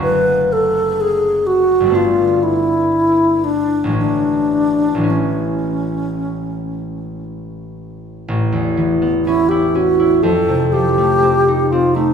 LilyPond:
<<
  \new Staff \with { instrumentName = "Alto flute" } { \time 4/4 \key g \lydian \tempo 4 = 61 b'8 a'8 gis'8 fis'8 f'8 e'4 d'8 | d'4 cis'2 r4 | r4 e'16 g'16 fis'8 a'8 g'4 f'16 ees'16 | }
  \new Staff \with { instrumentName = "Harp" } { \time 4/4 \key g \lydian << { r1 | r1 | a,,16 e,16 e16 b16 cis'16 e'16 cis'16 e'16 f,16 c16 f16 a16 c'16 ees'16 c'16 a16 | } \\ { <fis,, gis a cis' fis'>2 <g,, g a b d'>2 | <a,, e gis cis'>4 <a,, e gis cis'>2.~ | <a,, e gis cis'>2 r2 | } >> }
>>